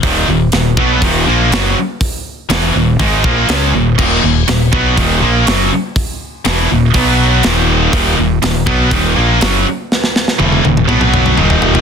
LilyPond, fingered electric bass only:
\new Staff \with { instrumentName = "Fingered electric bass" } { \clef bass \time 4/4 \key ees \minor \tempo 4 = 122 ees,,8 ees,,8 ees,,8 ces,8 ees,,8 bes,,8 ges,,8 r8 | r4 fes,,8 ees,,8 aes,,8 bes,,8 des,8 ees,,8 | ees,,8 ees,,8 ees,,8 ces,8 ees,,8 bes,,8 ges,,8 r8 | r4 fes,,8 ees,,8 b,,4 ees,,4 |
ees,,8 ees,,8 ees,,8 ces,8 ees,,8 bes,,8 ges,,8 r8 | r4 fes,,8 ees,,8 b,,4 ees,,4 | }